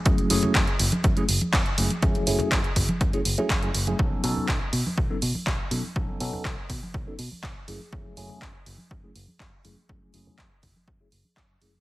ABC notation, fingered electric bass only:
X:1
M:4/4
L:1/8
Q:1/4=122
K:F#dor
V:1 name="Fingered electric bass" clef=bass
F,, F,,, F,, F,,, F,, F,,, F,, F,,, | F,, F,,, F,, F,,, F,, F,,, F,, F,,, | B,,, B,, B,,, B,, B,,, B,, B,,, B,, | B,,, B,, B,,, B,, B,,, B,, B,,, F,,, |
F,, F,,, F,, F,,, F,, F,,, F,, F,,, | F,, F,,, F,, F,,, F,, F,,, F,, F,,, |]